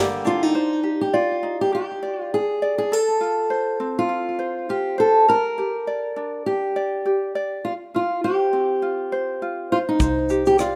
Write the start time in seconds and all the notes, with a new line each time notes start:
Already playing: D3 G3 A#3 G4 A#4 D5
0.25 D4 F4, shaker
0.43 D#4
0.55 C5
0.84 G4
1.01 G4
1.13 F4 D5
1.43 D#4
1.61 G4
1.72 G4
2.03 D5
2.21 F4
2.34 G#4
2.62 D5
2.78 G#4
2.92 A4
3.21 F4
3.50 C5
3.80 C4
3.99 F4
4.09 F4
4.39 C5
4.69 F4 G4
4.98 A4 C5
5.28 A#4
5.58 G4
5.87 D5
6.16 D4
6.46 G4
6.76 D5
7.06 G4
7.35 D5
7.65 F4
7.94 F4
8.24 G4 C5
8.53 C4
8.82 F4
9.12 C5
9.42 F4
9.72 F4 C5
9.89 D#4
10.00 C2 C5, kick, shaker
10.29 G4, shaker
10.46 G4, shaker
10.59 F4 D5, cross-stick, shaker